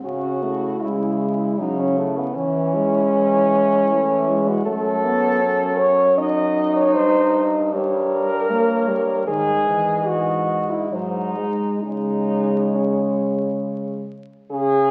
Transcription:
0.03 0.72 C#3 medium
0.03 0.44 C#4 medium
0.03 0.83 F#4 loud
0.41 0.84 A3 medium
0.41 1.18 E4 medium
0.81 1.50 C#3 medium
0.81 1.60 G#3 medium
0.81 1.59 E4 medium
1.20 1.96 E4 medium
1.58 2.27 C#3 medium
1.58 2.10 F#3 medium
1.58 1.81 D#4 medium
1.80 2.00 C#4 medium
1.97 2.19 A3 medium
1.97 2.35 E4 medium
2.18 2.36 B3 medium
2.35 3.04 E3 medium
2.35 2.76 E3 medium
2.35 4.50 C#4 loud
2.35 2.74 E4 medium
2.75 3.93 G#3 medium
2.75 3.51 E4 medium
3.15 3.82 E3 medium
3.52 4.27 E4 medium
3.91 4.57 E3 medium
3.91 4.30 A3 medium
4.29 4.66 G#3 medium
4.29 4.66 E4 medium
4.48 4.65 F#4 loud
4.66 6.96 F#2 medium
4.66 5.06 A3 medium
4.66 5.80 A4 loud
4.66 6.19 C#5 medium
5.04 5.43 B3 medium
5.42 6.19 C#4 medium
5.79 6.17 C#5 loud
6.18 7.76 D#4 loud
6.18 6.74 D#5 loud
6.18 6.94 D#5 medium
6.76 6.95 C#5 loud
6.94 9.28 G2 medium
6.94 7.46 C5 loud
6.94 7.76 D#5 medium
7.73 8.52 G3 medium
7.73 9.24 A#4 loud
7.73 8.35 C#5 medium
8.50 8.90 A#3 medium
8.50 9.27 C#5 medium
8.88 9.27 G3 medium
9.27 10.06 G#2 medium
9.27 9.68 D#3 medium
9.27 10.08 G#4 loud
9.27 10.95 D#5 medium
9.67 10.62 E3 medium
10.06 10.90 G#2 medium
10.06 10.71 F#4 loud
10.70 10.91 E4 medium
10.90 11.50 G#2 medium
10.90 11.38 F#3 medium
10.90 11.82 D#4 loud
10.90 11.52 C5 medium
11.36 11.83 G#3 medium
11.83 14.13 C#3 medium
11.83 14.04 G#3 medium
11.83 12.77 D#4 loud
11.83 14.15 C#5 medium
12.75 13.64 C#4 medium
14.51 14.91 C#3 loud
14.51 14.91 G#4 loud

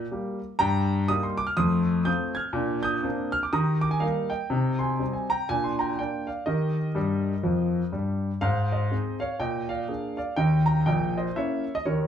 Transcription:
0.11 0.38 G3 soft
0.11 0.39 A#3 soft
0.11 0.39 G4 soft
0.59 1.01 G2 medium
0.59 1.06 G5 medium
0.59 1.09 A#5 loud
1.08 1.36 G3 medium
1.08 1.36 A#3 soft
1.08 1.36 D#4 soft
1.08 1.24 D#6 loud
1.23 1.39 C6 medium
1.38 1.48 D6 medium
1.47 1.57 F6 medium
1.57 1.99 F2 medium
1.57 1.86 A3 medium
1.57 2.03 C6 medium
1.57 2.05 D#6 loud
2.05 2.33 A3 soft
2.05 2.33 C4 soft
2.05 2.33 F4 soft
2.05 2.35 D#6 medium
2.05 2.36 G6 medium
2.35 2.82 F6 medium
2.35 2.85 G#6 medium
2.53 2.96 A#2 medium
2.53 2.82 D4 medium
2.83 3.31 D#6 medium
2.83 3.33 G6 medium
3.03 3.30 A#3 soft
3.03 3.30 C4 soft
3.03 3.31 D4 medium
3.32 3.43 F6 medium
3.43 3.53 D6 medium
3.53 3.95 D#3 medium
3.53 3.82 G4 soft
3.53 3.81 A#5 medium
3.53 3.83 D#6 medium
3.81 3.92 D6 medium
3.91 4.02 G#5 medium
4.00 4.28 G3 soft
4.00 4.29 A#3 soft
4.00 4.29 D#4 soft
4.00 4.30 A#4 medium
4.00 4.31 F5 medium
4.30 4.77 D#5 soft
4.30 4.80 G5 medium
4.50 4.92 C3 medium
4.50 4.79 D#4 soft
4.79 5.12 G#5 medium
4.79 5.14 C6 medium
4.99 5.27 G3 soft
4.99 5.26 C4 soft
4.99 5.27 D#4 soft
5.13 5.29 G#5 medium
5.30 5.48 G5 medium
5.30 5.49 A#5 medium
5.49 5.91 A#2 medium
5.49 5.78 D4 soft
5.49 5.64 G#5 medium
5.64 5.79 C6 medium
5.79 5.97 G5 medium
5.79 5.98 A#5 medium
5.99 6.26 A#3 soft
5.99 6.26 D4 soft
5.99 6.26 F4 soft
5.99 6.27 D5 medium
5.99 6.28 G5 medium
6.27 6.46 D5 soft
6.27 6.47 F5 medium
6.46 6.88 D#3 medium
6.46 6.75 G4 soft
6.46 7.90 A#4 medium
6.46 7.93 D#5 medium
6.95 7.32 G2 medium
6.95 7.32 G3 medium
7.43 7.81 F2 medium
7.43 7.81 F3 medium
7.92 8.30 G2 soft
7.92 8.30 G3 soft
8.41 8.84 G#2 medium
8.41 8.70 C5 medium
8.41 8.72 F5 medium
8.72 9.19 C5 soft
8.72 9.21 D#5 medium
8.91 9.18 C4 soft
8.91 9.18 D#4 soft
8.91 9.18 G#4 soft
9.20 9.39 C#5 medium
9.20 9.40 F5 medium
9.40 9.82 A#2 medium
9.40 9.69 D#5 medium
9.40 9.70 G5 medium
9.69 10.16 D5 medium
9.69 10.16 F5 medium
9.88 10.15 A#3 soft
9.88 10.16 D4 soft
9.88 10.16 G#4 soft
10.17 10.36 D5 medium
10.17 10.37 F5 medium
10.36 10.77 D#2 medium
10.36 10.77 D#3 medium
10.36 10.66 D#5 medium
10.36 10.66 G5 medium
10.66 10.84 G5 medium
10.66 10.86 A#5 medium
10.86 11.26 A#1 medium
10.86 11.26 A#2 medium
10.86 11.15 D#5 medium
10.86 11.16 G5 medium
11.18 11.35 C5 soft
11.18 11.36 D#5 medium
11.36 11.64 A#3 soft
11.36 11.63 C#4 soft
11.36 11.63 E4 soft
11.36 11.74 C#5 medium
11.36 11.76 E5 medium
11.75 11.85 D#5 medium
11.86 12.07 D#2 medium
11.86 12.07 D#3 medium
11.86 12.07 A#4 soft
11.86 12.07 C#5 medium

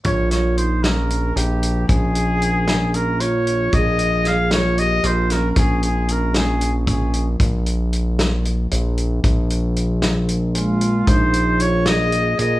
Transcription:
0.04 1.33 A#1 medium
0.04 0.29 F4 medium
0.04 0.30 C#5 medium
0.04 kick loud
0.04 closed hi-hat medium
0.31 0.56 F4 medium
0.31 0.59 C#5 medium
0.31 snare soft
0.31 closed hi-hat medium
0.57 0.84 D#4 medium
0.57 0.85 C5 medium
0.57 closed hi-hat medium
0.83 1.36 C#4 medium
0.83 1.38 A#4 medium
0.83 snare loud
0.83 closed hi-hat medium
1.10 closed hi-hat medium
1.36 1.85 A#1 loud
1.36 1.89 A#3 medium
1.36 1.88 G4 medium
1.36 closed hi-hat medium
1.63 closed hi-hat medium
1.88 3.69 A#1 medium
1.88 2.90 C#4 medium
1.88 2.96 G#4 medium
1.88 kick loud
1.88 closed hi-hat medium
2.15 closed hi-hat medium
2.42 closed hi-hat medium
2.68 snare loud
2.68 closed hi-hat medium
2.94 3.20 C#4 medium
2.94 3.22 A#4 medium
2.94 closed hi-hat medium
3.20 3.73 F4 medium
3.20 3.75 C#5 medium
3.20 closed hi-hat medium
3.47 closed hi-hat medium
3.72 5.00 A#1 medium
3.72 4.23 G#4 medium
3.72 4.29 D#5 loud
3.72 kick loud
3.72 closed hi-hat medium
3.99 closed hi-hat medium
4.24 4.51 G#4 medium
4.24 4.52 F5 medium
4.24 snare soft
4.24 closed hi-hat medium
4.51 4.76 F4 medium
4.51 4.80 C#5 medium
4.51 snare loud
4.51 closed hi-hat medium
4.78 5.04 G4 medium
4.78 5.07 D#5 loud
4.78 closed hi-hat medium
5.04 5.52 A#1 medium
5.04 5.30 F4 medium
5.04 5.33 C5 medium
5.04 closed hi-hat medium
5.30 5.47 C#4 medium
5.30 5.51 A#4 medium
5.30 snare soft
5.30 closed hi-hat medium
5.49 5.56 C#4 medium
5.49 5.60 A#4 medium
5.56 7.36 A#1 medium
5.56 5.83 C#4 medium
5.56 5.84 G#4 medium
5.56 kick loud
5.56 closed hi-hat medium
5.83 6.08 C4 medium
5.83 6.13 G#4 medium
5.83 closed hi-hat medium
6.09 6.33 C#4 medium
6.09 6.39 A#4 medium
6.09 closed hi-hat medium
6.34 6.87 C#4 medium
6.34 6.74 G#4 medium
6.34 snare loud
6.34 closed hi-hat medium
6.61 closed hi-hat medium
6.87 7.25 C#4 medium
6.87 7.26 G#4 medium
6.87 kick loud
6.87 closed hi-hat medium
7.14 closed hi-hat medium
7.40 8.67 A#1 medium
7.40 kick loud
7.40 closed hi-hat medium
7.66 closed hi-hat medium
7.93 closed hi-hat medium
8.19 snare loud
8.19 closed hi-hat medium
8.45 closed hi-hat medium
8.71 9.20 A#1 loud
8.71 closed hi-hat medium
8.98 closed hi-hat medium
9.24 11.04 A#1 medium
9.24 kick loud
9.24 closed hi-hat medium
9.50 closed hi-hat medium
9.76 closed hi-hat medium
10.02 snare medium
10.02 closed hi-hat medium
10.29 closed hi-hat medium
10.55 11.04 G#3 medium
10.55 11.10 F4 medium
10.55 closed hi-hat medium
10.81 closed hi-hat medium
11.07 12.35 A#1 medium
11.07 11.60 D#4 medium
11.07 11.62 C5 loud
11.07 kick loud
11.07 closed hi-hat medium
11.34 closed hi-hat medium
11.59 11.86 F4 medium
11.59 11.88 C#5 medium
11.59 closed hi-hat medium
11.86 12.36 G#4 medium
11.86 12.39 D#5 loud
11.86 snare loud
11.86 closed hi-hat medium
12.12 closed hi-hat medium
12.38 12.60 A#1 loud
12.38 12.60 G#4 medium
12.38 12.60 D#5 medium
12.38 closed hi-hat medium

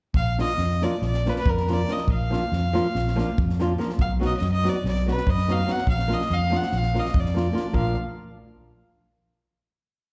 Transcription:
0.14 0.41 A#1 medium
0.14 0.37 F5 medium
0.14 kick medium
0.38 0.50 F3 soft
0.38 0.50 A#3 soft
0.38 0.50 D4 soft
0.38 0.51 F4 medium
0.38 0.85 D#5 loud
0.38 snare soft
0.58 0.84 F2 medium
0.58 snare soft
0.82 0.94 F3 medium
0.82 0.94 A#3 medium
0.82 0.94 D4 medium
0.82 0.95 F4 medium
0.82 1.03 D5 medium
0.82 snare soft
1.02 1.28 A#1 medium
1.02 snare soft
1.07 1.30 D5 medium
1.14 snare soft
1.26 1.38 F3 medium
1.26 1.38 A#3 soft
1.26 1.38 D4 medium
1.26 1.38 F4 medium
1.26 1.31 B4 medium
1.26 1.40 D5 medium
1.26 snare soft
1.36 1.51 B4 medium
1.36 snare soft
1.46 1.83 F2 medium
1.46 1.74 A#4 medium
1.46 kick loud
1.57 snare soft
1.67 1.80 F3 medium
1.67 1.80 A#3 medium
1.67 1.80 D4 medium
1.67 1.80 F4 medium
1.67 snare soft
1.72 1.94 D5 medium
1.88 2.00 F3 medium
1.88 2.00 A#3 soft
1.88 2.00 D4 medium
1.88 2.00 F4 medium
1.88 2.10 D#5 medium
1.88 snare soft
1.97 snare soft
2.07 2.34 A#1 medium
2.07 kick medium
2.12 3.36 F5 medium
2.30 2.42 F3 medium
2.30 2.43 A#3 soft
2.30 2.43 D4 soft
2.30 2.43 F4 medium
2.30 snare soft
2.52 2.78 F2 medium
2.52 snare soft
2.73 2.85 F3 medium
2.73 2.86 A#3 medium
2.73 2.86 D4 medium
2.73 2.86 F4 medium
2.73 snare soft
2.95 3.21 A#1 medium
2.95 snare soft
3.07 snare soft
3.16 3.28 F3 medium
3.16 3.28 A#3 medium
3.16 3.29 D4 medium
3.16 3.29 F4 medium
3.16 snare soft
3.38 3.75 F2 medium
3.38 kick medium
3.49 snare soft
3.59 3.71 F3 medium
3.59 3.71 A#3 medium
3.59 3.71 D4 medium
3.59 3.72 F4 medium
3.59 snare soft
3.78 3.90 F3 medium
3.78 3.90 A#3 medium
3.78 3.91 D4 medium
3.78 3.91 F4 medium
3.78 snare soft
3.89 snare soft
3.98 4.24 B1 medium
3.98 4.11 F5 medium
3.98 kick medium
4.20 4.32 F#3 medium
4.20 4.32 B3 medium
4.20 4.33 D#4 medium
4.20 4.33 F#4 medium
4.20 snare soft
4.26 4.36 D#5 medium
4.37 4.50 D#5 medium
4.41 4.67 F#2 medium
4.41 snare soft
4.52 4.71 D#5 medium
4.63 4.75 F#3 medium
4.63 4.75 B3 medium
4.63 4.76 D#4 medium
4.63 4.76 F#4 medium
4.63 snare soft
4.69 4.87 D5 medium
4.84 5.10 B1 medium
4.84 snare soft
4.88 5.08 D5 medium
4.95 snare soft
5.06 5.18 F#3 soft
5.06 5.18 B3 medium
5.06 5.19 D#4 soft
5.06 5.19 F#4 medium
5.06 snare soft
5.11 5.31 B4 medium
5.17 snare soft
5.27 5.63 F#2 medium
5.27 5.53 D#5 medium
5.27 kick medium
5.38 snare soft
5.48 5.59 F#3 medium
5.48 5.59 B3 medium
5.48 5.60 D#4 medium
5.48 5.61 F#4 medium
5.48 snare soft
5.52 5.73 F5 medium
5.66 5.78 F#3 medium
5.66 5.79 B3 soft
5.66 5.79 D#4 medium
5.66 5.79 F#4 medium
5.66 snare soft
5.72 5.89 F#5 loud
5.78 snare soft
5.87 6.13 A#1 medium
5.87 6.15 F5 medium
5.87 kick medium
5.99 snare soft
6.08 6.20 F3 medium
6.08 6.20 A#3 medium
6.08 6.21 D4 medium
6.08 6.21 F4 medium
6.08 snare soft
6.14 6.35 D#5 medium
6.21 snare soft
6.30 6.55 F2 medium
6.30 6.58 F5 loud
6.30 snare soft
6.50 6.62 F3 medium
6.50 6.63 A#3 medium
6.50 6.63 D4 medium
6.50 6.63 F4 medium
6.50 snare soft
6.57 6.79 F#5 medium
6.62 snare soft
6.72 6.98 A#1 medium
6.72 snare soft
6.77 7.01 F5 medium
6.83 snare soft
6.94 7.06 F3 medium
6.94 7.06 A#3 soft
6.94 7.06 D4 medium
6.94 7.06 F4 medium
6.94 snare soft
6.99 7.22 D#5 medium
7.05 snare soft
7.14 7.51 F2 medium
7.14 kick medium
7.20 7.75 D5 medium
7.26 snare soft
7.34 7.46 F3 medium
7.34 7.46 A#3 medium
7.34 7.47 D4 medium
7.34 7.47 F4 medium
7.34 snare soft
7.52 7.65 F3 medium
7.52 7.65 A#3 medium
7.52 7.65 D4 medium
7.52 7.66 F4 medium
7.57 snare soft
7.73 7.95 A#1 medium
7.73 7.95 F3 medium
7.73 7.95 A#3 medium
7.73 7.95 D4 medium
7.73 7.95 F4 medium
7.73 7.96 F5 medium
7.73 kick medium

